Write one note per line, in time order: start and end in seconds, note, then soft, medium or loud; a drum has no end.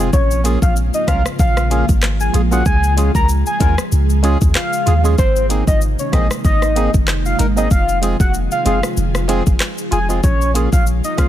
0.00 0.11 G#2 medium
0.00 5.14 F3 medium
0.00 0.10 C4 medium
0.00 0.11 C4 medium
0.00 0.11 F4 medium
0.00 5.14 F4 medium
0.00 0.11 G#4 medium
0.13 0.57 A#1 loud
0.13 5.15 C#3 medium
0.13 11.29 G#3 medium
0.13 2.63 A#3 medium
0.13 0.41 C#5 loud
0.13 kick loud
0.13 shaker medium
0.31 shaker medium
0.44 0.58 A#3 medium
0.44 0.59 C#4 medium
0.44 0.59 F4 medium
0.44 0.59 G#4 medium
0.44 closed hi-hat medium
0.44 shaker medium
0.62 0.91 A#1 loud
0.62 0.75 F5 medium
0.62 kick loud
0.62 shaker medium
0.76 shaker medium
0.94 1.06 D#5 medium
0.94 shaker medium
1.07 1.24 C2 medium
1.07 1.22 A#3 medium
1.07 1.22 C#4 medium
1.07 1.22 F4 medium
1.07 1.22 A#4 medium
1.07 1.23 F5 medium
1.07 kick medium
1.07 cross-stick loud
1.07 closed hi-hat medium
1.07 shaker medium
1.26 cross-stick loud
1.26 shaker medium
1.39 1.84 A#1 loud
1.39 1.86 F5 loud
1.39 kick loud
1.39 shaker medium
1.57 cross-stick loud
1.57 shaker soft
1.70 1.85 A#3 medium
1.70 1.85 C#4 medium
1.70 1.85 F4 medium
1.70 1.86 G#4 medium
1.70 closed hi-hat medium
1.70 shaker medium
1.89 2.30 G#1 loud
1.89 kick medium
1.89 shaker medium
2.02 cross-stick loud
2.02 clap loud
2.02 shaker medium
2.20 2.32 G#5 medium
2.20 shaker medium
2.33 2.62 A#1 loud
2.33 2.41 F4 medium
2.33 2.42 G#4 medium
2.33 closed hi-hat medium
2.33 shaker medium
2.51 2.63 A#3 medium
2.51 2.63 C#4 medium
2.51 2.63 F4 medium
2.51 2.63 G#4 medium
2.51 2.64 F#5 medium
2.51 shaker medium
2.66 3.10 C#2 loud
2.66 5.16 G#4 medium
2.66 2.93 G#5 loud
2.66 kick loud
2.66 shaker medium
2.84 shaker medium
2.97 3.11 G#3 medium
2.97 3.11 C#4 medium
2.97 3.12 F4 medium
2.97 3.12 G#4 medium
2.97 closed hi-hat medium
2.97 shaker medium
3.15 3.43 C#2 loud
3.15 3.27 A#5 medium
3.15 kick loud
3.15 shaker medium
3.29 shaker medium
3.46 3.59 G#5 medium
3.46 shaker medium
3.60 3.76 D#2 loud
3.60 3.74 G#3 medium
3.60 3.75 C#4 medium
3.60 3.75 F4 medium
3.60 3.75 A#4 medium
3.60 3.76 G#5 medium
3.60 kick medium
3.60 closed hi-hat medium
3.60 shaker medium
3.78 cross-stick loud
3.78 shaker medium
3.92 4.36 C#2 loud
3.92 shaker medium
4.10 shaker medium
4.23 4.37 G#3 medium
4.23 4.38 C#4 medium
4.23 4.38 F4 medium
4.23 4.38 G#4 loud
4.23 closed hi-hat medium
4.23 shaker medium
4.41 4.54 D#2 loud
4.41 kick medium
4.41 shaker medium
4.55 5.02 F5 medium
4.55 cross-stick loud
4.55 clap loud
4.55 shaker medium
4.73 shaker medium
4.86 5.15 D#2 loud
4.86 4.94 F4 medium
4.86 4.94 G#4 medium
4.86 closed hi-hat medium
4.86 shaker medium
5.04 5.15 G#3 medium
5.04 5.16 C#4 medium
5.04 5.16 F4 medium
5.04 5.16 G#4 medium
5.04 shaker medium
5.18 5.63 G#1 loud
5.18 10.20 C3 medium
5.18 7.69 D#3 medium
5.18 7.69 A#3 medium
5.18 7.69 D#4 medium
5.18 5.46 C5 loud
5.18 kick loud
5.18 shaker medium
5.36 shaker medium
5.49 5.64 A#3 medium
5.49 5.64 C4 medium
5.49 5.64 D#4 medium
5.49 5.65 G#4 medium
5.49 closed hi-hat medium
5.49 shaker medium
5.67 5.96 G#1 loud
5.67 5.80 D#5 medium
5.67 kick loud
5.67 shaker medium
5.81 shaker medium
5.99 6.11 C#5 medium
5.99 shaker medium
6.12 6.29 A#1 medium
6.12 6.27 A#3 medium
6.12 6.27 C4 medium
6.12 6.27 D#4 medium
6.12 6.28 G#4 medium
6.12 6.29 D#5 medium
6.12 kick medium
6.12 cross-stick loud
6.12 closed hi-hat medium
6.12 shaker medium
6.31 cross-stick loud
6.31 shaker medium
6.45 6.89 G#1 loud
6.45 6.91 D#5 loud
6.45 kick loud
6.45 shaker medium
6.62 cross-stick medium
6.62 shaker soft
6.76 6.90 A#3 medium
6.76 6.90 C4 medium
6.76 6.91 D#4 medium
6.76 6.91 G#4 medium
6.76 closed hi-hat medium
6.76 shaker medium
6.94 7.35 F#1 medium
6.94 kick medium
6.94 shaker medium
7.08 cross-stick loud
7.08 clap medium
7.08 shaker medium
7.25 7.38 F5 medium
7.25 shaker medium
7.39 7.68 G#1 loud
7.39 7.46 D#4 medium
7.39 7.47 A#4 medium
7.39 closed hi-hat medium
7.39 shaker medium
7.56 7.68 A#3 medium
7.56 7.68 C4 medium
7.56 7.68 D#4 medium
7.56 7.69 G#4 medium
7.56 7.69 D#5 medium
7.56 shaker medium
7.71 8.15 F1 loud
7.71 10.21 F3 medium
7.71 11.29 F4 medium
7.71 10.21 G#4 medium
7.71 7.99 F5 loud
7.71 kick loud
7.71 shaker medium
7.89 shaker medium
8.02 8.16 G#3 medium
8.02 8.17 C4 medium
8.02 8.17 F4 medium
8.02 8.17 G#4 medium
8.02 closed hi-hat medium
8.02 shaker medium
8.20 8.48 F1 loud
8.20 8.32 F#5 medium
8.20 kick loud
8.20 shaker medium
8.34 shaker medium
8.51 8.64 F5 medium
8.51 shaker medium
8.65 8.82 F#1 medium
8.65 8.80 G#3 medium
8.65 8.80 C4 medium
8.65 8.80 F4 medium
8.65 8.80 G#4 medium
8.65 8.81 F5 medium
8.65 closed hi-hat medium
8.65 shaker medium
8.83 cross-stick loud
8.83 shaker medium
8.97 9.41 F1 loud
8.97 shaker medium
9.15 cross-stick loud
9.15 shaker medium
9.28 9.43 G#3 loud
9.28 9.43 C4 medium
9.28 9.43 F4 medium
9.28 9.43 G#4 loud
9.28 closed hi-hat medium
9.28 shaker soft
9.47 9.59 F#1 medium
9.47 kick medium
9.47 shaker medium
9.60 cross-stick loud
9.60 clap loud
9.60 shaker medium
9.78 shaker medium
9.91 10.20 F1 loud
9.91 9.99 F4 medium
9.91 10.00 G#4 medium
9.91 10.08 G#5 medium
9.91 closed hi-hat medium
9.91 shaker medium
10.09 10.20 G#3 medium
10.09 10.21 C4 medium
10.09 10.21 F4 medium
10.09 10.21 G#4 medium
10.09 shaker medium
10.23 10.68 A#1 loud
10.23 11.29 C#3 medium
10.23 11.29 F3 medium
10.23 11.29 A#3 medium
10.23 10.51 C#5 loud
10.23 kick loud
10.23 shaker medium
10.41 shaker medium
10.54 10.69 A#3 medium
10.54 10.69 C#4 medium
10.54 10.69 F4 medium
10.54 10.70 G#4 medium
10.54 closed hi-hat medium
10.54 shaker medium
10.73 11.01 A#1 medium
10.73 10.85 F5 medium
10.73 kick loud
10.73 shaker medium
10.87 shaker medium
11.04 11.17 D#5 medium
11.04 shaker medium
11.17 11.29 C2 loud
11.17 11.29 A#3 medium
11.17 11.29 C#4 medium
11.17 11.29 F4 medium
11.17 11.29 G#4 medium
11.17 11.29 F5 medium
11.17 kick loud
11.17 cross-stick loud
11.17 closed hi-hat medium
11.17 shaker medium